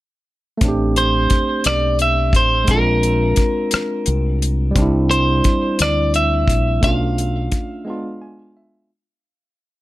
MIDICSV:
0, 0, Header, 1, 6, 480
1, 0, Start_track
1, 0, Key_signature, 0, "minor"
1, 0, Tempo, 689655
1, 427, Time_signature, 6, 3, 24, 8
1, 6831, End_track
2, 0, Start_track
2, 0, Title_t, "Clean electric guitar"
2, 0, Program_c, 0, 27
2, 680, Note_on_c, 0, 72, 72
2, 1156, Note_off_c, 0, 72, 0
2, 1158, Note_on_c, 0, 74, 84
2, 1376, Note_off_c, 0, 74, 0
2, 1404, Note_on_c, 0, 76, 80
2, 1642, Note_off_c, 0, 76, 0
2, 1645, Note_on_c, 0, 72, 76
2, 1883, Note_off_c, 0, 72, 0
2, 1885, Note_on_c, 0, 70, 76
2, 3048, Note_off_c, 0, 70, 0
2, 3554, Note_on_c, 0, 72, 68
2, 4045, Note_off_c, 0, 72, 0
2, 4049, Note_on_c, 0, 74, 77
2, 4262, Note_off_c, 0, 74, 0
2, 4285, Note_on_c, 0, 76, 79
2, 4759, Note_off_c, 0, 76, 0
2, 4762, Note_on_c, 0, 77, 89
2, 5926, Note_off_c, 0, 77, 0
2, 6831, End_track
3, 0, Start_track
3, 0, Title_t, "Tine electric piano"
3, 0, Program_c, 1, 4
3, 400, Note_on_c, 1, 57, 63
3, 424, Note_on_c, 1, 60, 58
3, 450, Note_on_c, 1, 62, 59
3, 475, Note_on_c, 1, 67, 70
3, 535, Control_c, 1, 64, 127
3, 1825, Note_off_c, 1, 57, 0
3, 1838, Note_off_c, 1, 60, 0
3, 1838, Note_on_c, 1, 56, 53
3, 1850, Note_off_c, 1, 62, 0
3, 1862, Note_on_c, 1, 60, 48
3, 1863, Note_off_c, 1, 67, 0
3, 1877, Control_c, 1, 64, 0
3, 1887, Note_on_c, 1, 62, 48
3, 1911, Note_on_c, 1, 65, 57
3, 2010, Control_c, 1, 64, 127
3, 3264, Note_off_c, 1, 56, 0
3, 3276, Note_off_c, 1, 60, 0
3, 3278, Note_on_c, 1, 55, 70
3, 3289, Note_off_c, 1, 62, 0
3, 3301, Note_off_c, 1, 65, 0
3, 3305, Note_on_c, 1, 60, 57
3, 3317, Control_c, 1, 64, 0
3, 3329, Note_on_c, 1, 62, 61
3, 3354, Note_on_c, 1, 64, 69
3, 3432, Control_c, 1, 64, 127
3, 4705, Note_off_c, 1, 55, 0
3, 4718, Note_off_c, 1, 60, 0
3, 4730, Note_off_c, 1, 62, 0
3, 4741, Note_on_c, 1, 57, 58
3, 4742, Note_off_c, 1, 64, 0
3, 4753, Note_on_c, 1, 61, 53
3, 4756, Control_c, 1, 64, 0
3, 4765, Note_on_c, 1, 62, 47
3, 4779, Note_on_c, 1, 65, 62
3, 4897, Control_c, 1, 64, 127
3, 5461, Note_on_c, 1, 56, 65
3, 5464, Note_off_c, 1, 57, 0
3, 5470, Note_off_c, 1, 61, 0
3, 5473, Note_on_c, 1, 59, 60
3, 5475, Control_c, 1, 64, 0
3, 5476, Note_off_c, 1, 62, 0
3, 5483, Note_off_c, 1, 65, 0
3, 5483, Note_on_c, 1, 62, 55
3, 5498, Note_on_c, 1, 65, 73
3, 5593, Control_c, 1, 64, 127
3, 5718, Note_on_c, 1, 80, 57
3, 5936, Note_off_c, 1, 80, 0
3, 5962, Note_on_c, 1, 76, 56
3, 6178, Note_off_c, 1, 76, 0
3, 6184, Note_off_c, 1, 56, 0
3, 6190, Note_off_c, 1, 59, 0
3, 6195, Note_off_c, 1, 62, 0
3, 6197, Control_c, 1, 64, 0
3, 6202, Note_off_c, 1, 65, 0
3, 6831, End_track
4, 0, Start_track
4, 0, Title_t, "Fingered electric bass"
4, 0, Program_c, 2, 33
4, 432, Note_on_c, 2, 33, 85
4, 882, Note_off_c, 2, 33, 0
4, 1153, Note_on_c, 2, 35, 76
4, 1626, Note_off_c, 2, 35, 0
4, 1626, Note_on_c, 2, 33, 75
4, 1842, Note_off_c, 2, 33, 0
4, 1870, Note_on_c, 2, 34, 84
4, 2321, Note_off_c, 2, 34, 0
4, 2835, Note_on_c, 2, 36, 75
4, 3283, Note_off_c, 2, 36, 0
4, 3314, Note_on_c, 2, 36, 86
4, 3763, Note_off_c, 2, 36, 0
4, 4038, Note_on_c, 2, 38, 74
4, 4484, Note_off_c, 2, 38, 0
4, 4511, Note_on_c, 2, 34, 73
4, 4725, Note_off_c, 2, 34, 0
4, 4757, Note_on_c, 2, 35, 86
4, 5204, Note_off_c, 2, 35, 0
4, 6831, End_track
5, 0, Start_track
5, 0, Title_t, "Muted fingered electric bass strokes"
5, 914, Note_on_c, 9, 29, 40
5, 983, Note_off_c, 9, 29, 0
5, 2353, Note_on_c, 9, 29, 41
5, 2422, Note_off_c, 9, 29, 0
5, 2597, Note_on_c, 9, 29, 38
5, 2667, Note_off_c, 9, 29, 0
5, 6831, End_track
6, 0, Start_track
6, 0, Title_t, "Drums"
6, 425, Note_on_c, 9, 42, 46
6, 427, Note_on_c, 9, 36, 88
6, 495, Note_off_c, 9, 42, 0
6, 497, Note_off_c, 9, 36, 0
6, 670, Note_on_c, 9, 42, 41
6, 740, Note_off_c, 9, 42, 0
6, 903, Note_on_c, 9, 42, 47
6, 909, Note_on_c, 9, 36, 71
6, 973, Note_off_c, 9, 42, 0
6, 979, Note_off_c, 9, 36, 0
6, 1142, Note_on_c, 9, 42, 62
6, 1163, Note_on_c, 9, 37, 79
6, 1212, Note_off_c, 9, 42, 0
6, 1233, Note_off_c, 9, 37, 0
6, 1384, Note_on_c, 9, 42, 46
6, 1454, Note_off_c, 9, 42, 0
6, 1621, Note_on_c, 9, 36, 81
6, 1632, Note_on_c, 9, 42, 46
6, 1691, Note_off_c, 9, 36, 0
6, 1702, Note_off_c, 9, 42, 0
6, 1862, Note_on_c, 9, 42, 50
6, 1865, Note_on_c, 9, 36, 87
6, 1931, Note_off_c, 9, 42, 0
6, 1935, Note_off_c, 9, 36, 0
6, 2110, Note_on_c, 9, 42, 42
6, 2180, Note_off_c, 9, 42, 0
6, 2339, Note_on_c, 9, 42, 47
6, 2348, Note_on_c, 9, 36, 74
6, 2409, Note_off_c, 9, 42, 0
6, 2418, Note_off_c, 9, 36, 0
6, 2582, Note_on_c, 9, 42, 62
6, 2603, Note_on_c, 9, 37, 78
6, 2651, Note_off_c, 9, 42, 0
6, 2672, Note_off_c, 9, 37, 0
6, 2825, Note_on_c, 9, 42, 47
6, 2894, Note_off_c, 9, 42, 0
6, 3078, Note_on_c, 9, 42, 46
6, 3148, Note_off_c, 9, 42, 0
6, 3310, Note_on_c, 9, 36, 87
6, 3310, Note_on_c, 9, 42, 46
6, 3380, Note_off_c, 9, 36, 0
6, 3380, Note_off_c, 9, 42, 0
6, 3557, Note_on_c, 9, 42, 43
6, 3626, Note_off_c, 9, 42, 0
6, 3788, Note_on_c, 9, 42, 48
6, 3793, Note_on_c, 9, 36, 76
6, 3857, Note_off_c, 9, 42, 0
6, 3862, Note_off_c, 9, 36, 0
6, 4029, Note_on_c, 9, 42, 65
6, 4050, Note_on_c, 9, 37, 80
6, 4098, Note_off_c, 9, 42, 0
6, 4119, Note_off_c, 9, 37, 0
6, 4273, Note_on_c, 9, 42, 49
6, 4343, Note_off_c, 9, 42, 0
6, 4507, Note_on_c, 9, 36, 81
6, 4521, Note_on_c, 9, 42, 50
6, 4577, Note_off_c, 9, 36, 0
6, 4590, Note_off_c, 9, 42, 0
6, 4752, Note_on_c, 9, 36, 89
6, 4752, Note_on_c, 9, 42, 49
6, 4822, Note_off_c, 9, 36, 0
6, 4822, Note_off_c, 9, 42, 0
6, 4999, Note_on_c, 9, 42, 42
6, 5069, Note_off_c, 9, 42, 0
6, 5231, Note_on_c, 9, 42, 45
6, 5234, Note_on_c, 9, 36, 77
6, 5300, Note_off_c, 9, 42, 0
6, 5304, Note_off_c, 9, 36, 0
6, 6831, End_track
0, 0, End_of_file